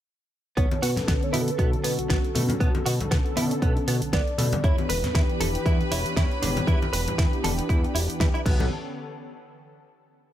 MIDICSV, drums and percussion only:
0, 0, Header, 1, 2, 480
1, 0, Start_track
1, 0, Key_signature, 2, "minor"
1, 0, Tempo, 508475
1, 543, Time_signature, 4, 2, 24, 8
1, 9752, End_track
2, 0, Start_track
2, 0, Title_t, "Drums"
2, 540, Note_on_c, 9, 36, 105
2, 543, Note_on_c, 9, 42, 48
2, 634, Note_off_c, 9, 36, 0
2, 637, Note_off_c, 9, 42, 0
2, 674, Note_on_c, 9, 63, 82
2, 677, Note_on_c, 9, 42, 24
2, 769, Note_off_c, 9, 63, 0
2, 771, Note_off_c, 9, 42, 0
2, 782, Note_on_c, 9, 46, 95
2, 877, Note_off_c, 9, 46, 0
2, 910, Note_on_c, 9, 64, 79
2, 918, Note_on_c, 9, 38, 35
2, 918, Note_on_c, 9, 42, 51
2, 1005, Note_off_c, 9, 64, 0
2, 1012, Note_off_c, 9, 38, 0
2, 1012, Note_off_c, 9, 42, 0
2, 1019, Note_on_c, 9, 36, 111
2, 1022, Note_on_c, 9, 38, 114
2, 1023, Note_on_c, 9, 42, 49
2, 1114, Note_off_c, 9, 36, 0
2, 1117, Note_off_c, 9, 38, 0
2, 1117, Note_off_c, 9, 42, 0
2, 1157, Note_on_c, 9, 42, 25
2, 1252, Note_off_c, 9, 42, 0
2, 1262, Note_on_c, 9, 46, 99
2, 1268, Note_on_c, 9, 63, 74
2, 1357, Note_off_c, 9, 46, 0
2, 1363, Note_off_c, 9, 63, 0
2, 1396, Note_on_c, 9, 42, 50
2, 1490, Note_off_c, 9, 42, 0
2, 1499, Note_on_c, 9, 36, 98
2, 1501, Note_on_c, 9, 42, 52
2, 1594, Note_off_c, 9, 36, 0
2, 1595, Note_off_c, 9, 42, 0
2, 1636, Note_on_c, 9, 42, 25
2, 1731, Note_off_c, 9, 42, 0
2, 1740, Note_on_c, 9, 46, 94
2, 1835, Note_off_c, 9, 46, 0
2, 1876, Note_on_c, 9, 42, 51
2, 1971, Note_off_c, 9, 42, 0
2, 1979, Note_on_c, 9, 36, 105
2, 1984, Note_on_c, 9, 38, 114
2, 1984, Note_on_c, 9, 42, 50
2, 2074, Note_off_c, 9, 36, 0
2, 2079, Note_off_c, 9, 38, 0
2, 2079, Note_off_c, 9, 42, 0
2, 2118, Note_on_c, 9, 42, 24
2, 2213, Note_off_c, 9, 42, 0
2, 2219, Note_on_c, 9, 64, 70
2, 2221, Note_on_c, 9, 63, 64
2, 2223, Note_on_c, 9, 46, 96
2, 2313, Note_off_c, 9, 64, 0
2, 2316, Note_off_c, 9, 63, 0
2, 2317, Note_off_c, 9, 46, 0
2, 2347, Note_on_c, 9, 63, 74
2, 2356, Note_on_c, 9, 64, 86
2, 2357, Note_on_c, 9, 42, 51
2, 2441, Note_off_c, 9, 63, 0
2, 2451, Note_off_c, 9, 42, 0
2, 2451, Note_off_c, 9, 64, 0
2, 2459, Note_on_c, 9, 36, 111
2, 2464, Note_on_c, 9, 42, 46
2, 2554, Note_off_c, 9, 36, 0
2, 2559, Note_off_c, 9, 42, 0
2, 2593, Note_on_c, 9, 63, 88
2, 2595, Note_on_c, 9, 42, 23
2, 2687, Note_off_c, 9, 63, 0
2, 2690, Note_off_c, 9, 42, 0
2, 2703, Note_on_c, 9, 46, 100
2, 2797, Note_off_c, 9, 46, 0
2, 2837, Note_on_c, 9, 42, 49
2, 2840, Note_on_c, 9, 64, 82
2, 2931, Note_off_c, 9, 42, 0
2, 2934, Note_off_c, 9, 64, 0
2, 2939, Note_on_c, 9, 36, 119
2, 2943, Note_on_c, 9, 38, 115
2, 2943, Note_on_c, 9, 42, 50
2, 3033, Note_off_c, 9, 36, 0
2, 3037, Note_off_c, 9, 38, 0
2, 3037, Note_off_c, 9, 42, 0
2, 3075, Note_on_c, 9, 42, 25
2, 3169, Note_off_c, 9, 42, 0
2, 3180, Note_on_c, 9, 46, 102
2, 3181, Note_on_c, 9, 63, 78
2, 3275, Note_off_c, 9, 46, 0
2, 3275, Note_off_c, 9, 63, 0
2, 3315, Note_on_c, 9, 42, 48
2, 3409, Note_off_c, 9, 42, 0
2, 3419, Note_on_c, 9, 36, 107
2, 3421, Note_on_c, 9, 42, 51
2, 3513, Note_off_c, 9, 36, 0
2, 3516, Note_off_c, 9, 42, 0
2, 3555, Note_on_c, 9, 42, 25
2, 3650, Note_off_c, 9, 42, 0
2, 3661, Note_on_c, 9, 46, 100
2, 3755, Note_off_c, 9, 46, 0
2, 3793, Note_on_c, 9, 42, 49
2, 3888, Note_off_c, 9, 42, 0
2, 3899, Note_on_c, 9, 36, 109
2, 3901, Note_on_c, 9, 38, 117
2, 3901, Note_on_c, 9, 42, 52
2, 3993, Note_off_c, 9, 36, 0
2, 3996, Note_off_c, 9, 38, 0
2, 3996, Note_off_c, 9, 42, 0
2, 4036, Note_on_c, 9, 42, 25
2, 4130, Note_off_c, 9, 42, 0
2, 4140, Note_on_c, 9, 46, 104
2, 4146, Note_on_c, 9, 63, 62
2, 4147, Note_on_c, 9, 64, 69
2, 4235, Note_off_c, 9, 46, 0
2, 4240, Note_off_c, 9, 63, 0
2, 4242, Note_off_c, 9, 64, 0
2, 4272, Note_on_c, 9, 42, 51
2, 4275, Note_on_c, 9, 64, 95
2, 4276, Note_on_c, 9, 63, 80
2, 4367, Note_off_c, 9, 42, 0
2, 4369, Note_off_c, 9, 64, 0
2, 4371, Note_off_c, 9, 63, 0
2, 4378, Note_on_c, 9, 36, 120
2, 4381, Note_on_c, 9, 42, 48
2, 4473, Note_off_c, 9, 36, 0
2, 4475, Note_off_c, 9, 42, 0
2, 4515, Note_on_c, 9, 63, 85
2, 4517, Note_on_c, 9, 42, 23
2, 4609, Note_off_c, 9, 63, 0
2, 4611, Note_off_c, 9, 42, 0
2, 4623, Note_on_c, 9, 46, 105
2, 4717, Note_off_c, 9, 46, 0
2, 4757, Note_on_c, 9, 38, 35
2, 4757, Note_on_c, 9, 42, 47
2, 4757, Note_on_c, 9, 64, 86
2, 4851, Note_off_c, 9, 38, 0
2, 4851, Note_off_c, 9, 42, 0
2, 4851, Note_off_c, 9, 64, 0
2, 4859, Note_on_c, 9, 36, 122
2, 4863, Note_on_c, 9, 38, 114
2, 4863, Note_on_c, 9, 42, 50
2, 4954, Note_off_c, 9, 36, 0
2, 4958, Note_off_c, 9, 38, 0
2, 4958, Note_off_c, 9, 42, 0
2, 4998, Note_on_c, 9, 42, 24
2, 5092, Note_off_c, 9, 42, 0
2, 5104, Note_on_c, 9, 46, 106
2, 5104, Note_on_c, 9, 63, 76
2, 5198, Note_off_c, 9, 46, 0
2, 5198, Note_off_c, 9, 63, 0
2, 5239, Note_on_c, 9, 42, 48
2, 5334, Note_off_c, 9, 42, 0
2, 5340, Note_on_c, 9, 36, 114
2, 5344, Note_on_c, 9, 42, 48
2, 5434, Note_off_c, 9, 36, 0
2, 5438, Note_off_c, 9, 42, 0
2, 5481, Note_on_c, 9, 42, 25
2, 5575, Note_off_c, 9, 42, 0
2, 5585, Note_on_c, 9, 46, 104
2, 5680, Note_off_c, 9, 46, 0
2, 5718, Note_on_c, 9, 42, 48
2, 5813, Note_off_c, 9, 42, 0
2, 5820, Note_on_c, 9, 36, 117
2, 5826, Note_on_c, 9, 38, 117
2, 5826, Note_on_c, 9, 42, 49
2, 5915, Note_off_c, 9, 36, 0
2, 5921, Note_off_c, 9, 38, 0
2, 5921, Note_off_c, 9, 42, 0
2, 5961, Note_on_c, 9, 42, 23
2, 6056, Note_off_c, 9, 42, 0
2, 6064, Note_on_c, 9, 63, 69
2, 6067, Note_on_c, 9, 46, 106
2, 6076, Note_on_c, 9, 64, 74
2, 6158, Note_off_c, 9, 63, 0
2, 6161, Note_off_c, 9, 46, 0
2, 6171, Note_off_c, 9, 64, 0
2, 6199, Note_on_c, 9, 63, 82
2, 6201, Note_on_c, 9, 42, 49
2, 6203, Note_on_c, 9, 64, 85
2, 6293, Note_off_c, 9, 63, 0
2, 6296, Note_off_c, 9, 42, 0
2, 6298, Note_off_c, 9, 64, 0
2, 6301, Note_on_c, 9, 36, 120
2, 6306, Note_on_c, 9, 42, 46
2, 6395, Note_off_c, 9, 36, 0
2, 6401, Note_off_c, 9, 42, 0
2, 6441, Note_on_c, 9, 42, 22
2, 6442, Note_on_c, 9, 63, 88
2, 6536, Note_off_c, 9, 42, 0
2, 6536, Note_off_c, 9, 63, 0
2, 6546, Note_on_c, 9, 46, 103
2, 6640, Note_off_c, 9, 46, 0
2, 6680, Note_on_c, 9, 42, 49
2, 6685, Note_on_c, 9, 64, 81
2, 6775, Note_off_c, 9, 42, 0
2, 6779, Note_off_c, 9, 64, 0
2, 6781, Note_on_c, 9, 36, 122
2, 6786, Note_on_c, 9, 38, 112
2, 6786, Note_on_c, 9, 42, 48
2, 6876, Note_off_c, 9, 36, 0
2, 6880, Note_off_c, 9, 38, 0
2, 6880, Note_off_c, 9, 42, 0
2, 6922, Note_on_c, 9, 42, 24
2, 7016, Note_off_c, 9, 42, 0
2, 7026, Note_on_c, 9, 63, 86
2, 7027, Note_on_c, 9, 46, 105
2, 7120, Note_off_c, 9, 63, 0
2, 7122, Note_off_c, 9, 46, 0
2, 7161, Note_on_c, 9, 42, 49
2, 7255, Note_off_c, 9, 42, 0
2, 7262, Note_on_c, 9, 36, 112
2, 7269, Note_on_c, 9, 42, 47
2, 7356, Note_off_c, 9, 36, 0
2, 7363, Note_off_c, 9, 42, 0
2, 7405, Note_on_c, 9, 42, 25
2, 7499, Note_off_c, 9, 42, 0
2, 7510, Note_on_c, 9, 46, 100
2, 7605, Note_off_c, 9, 46, 0
2, 7644, Note_on_c, 9, 42, 50
2, 7738, Note_off_c, 9, 42, 0
2, 7742, Note_on_c, 9, 36, 117
2, 7749, Note_on_c, 9, 38, 112
2, 7750, Note_on_c, 9, 42, 51
2, 7836, Note_off_c, 9, 36, 0
2, 7844, Note_off_c, 9, 38, 0
2, 7844, Note_off_c, 9, 42, 0
2, 7883, Note_on_c, 9, 42, 23
2, 7977, Note_off_c, 9, 42, 0
2, 7982, Note_on_c, 9, 64, 75
2, 7983, Note_on_c, 9, 36, 110
2, 7987, Note_on_c, 9, 49, 81
2, 7990, Note_on_c, 9, 63, 66
2, 8077, Note_off_c, 9, 36, 0
2, 8077, Note_off_c, 9, 64, 0
2, 8082, Note_off_c, 9, 49, 0
2, 8084, Note_off_c, 9, 63, 0
2, 8120, Note_on_c, 9, 63, 84
2, 8121, Note_on_c, 9, 64, 87
2, 8215, Note_off_c, 9, 63, 0
2, 8216, Note_off_c, 9, 64, 0
2, 9752, End_track
0, 0, End_of_file